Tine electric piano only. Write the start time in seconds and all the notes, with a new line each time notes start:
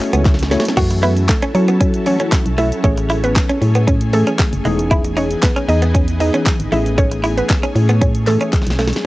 Already playing: A3 C#4 E4 F#4 C#5
0.51 A3 C#4 E4 F#4 C#5
0.77 E3 A3 C#4 F#4
2.06 E3 A3 C#4 F#4
2.84 E3 A3 C#4 G#4
4.13 E3 A3 C#4 G#4
4.65 E3 B3 D#4 G#4
6.20 E3 B3 D#4 G#4
6.72 E3 A3 C#4 G#4
8.27 E3 A3 C#4 G#4